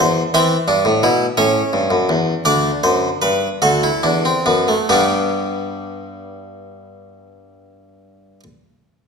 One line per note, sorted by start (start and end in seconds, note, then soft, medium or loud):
0.00 0.21 E2 medium
0.00 0.21 C5 medium
0.34 0.55 E3 loud
0.34 0.55 C4 medium
0.34 1.34 E5 medium
0.68 0.84 G2 medium
0.68 0.89 D4 medium
0.85 1.02 A2 loud
1.03 1.25 B2 loud
1.03 1.25 E4 medium
1.37 1.59 A2 medium
1.37 2.43 C#4 medium
1.37 2.43 C#5 medium
1.73 1.91 G2 medium
1.91 2.08 F#2 medium
2.09 2.32 E2 medium
2.45 2.69 D2 medium
2.45 3.59 D4 loud
2.45 2.69 D5 medium
2.83 3.08 F#2 medium
2.83 3.08 C5 medium
3.22 3.47 G2 medium
3.22 3.47 B4 medium
3.62 3.88 D2 medium
3.62 3.82 F#4 medium
3.62 4.85 A4 medium
3.83 4.03 E4 medium
4.03 4.30 E2 medium
4.03 4.24 D4 medium
4.25 4.46 C4 medium
4.46 4.73 F#2 medium
4.46 4.67 B3 medium
4.68 4.89 A3 medium
4.89 8.40 G2 medium
4.89 8.43 G3 medium
4.89 8.40 B3 medium
4.89 8.43 D4 medium
4.89 8.40 G4 medium